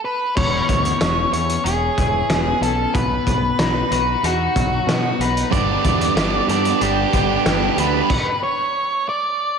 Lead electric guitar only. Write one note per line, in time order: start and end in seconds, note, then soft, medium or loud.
0.05 0.36 B4 medium
0.37 1.32 C#5 medium
1.33 1.66 C#5 medium
1.64 2.62 G#4 medium
2.63 2.96 A4 medium
2.94 3.92 B4 medium
3.93 4.25 B4 medium
4.25 5.24 F#4 medium
5.21 5.51 B4 medium
5.52 6.45 D5 loud
6.51 6.83 D5 loud
6.82 7.79 G4 medium
7.80 8.39 B4 loud
8.43 9.08 C#5 loud
9.09 9.59 D5 medium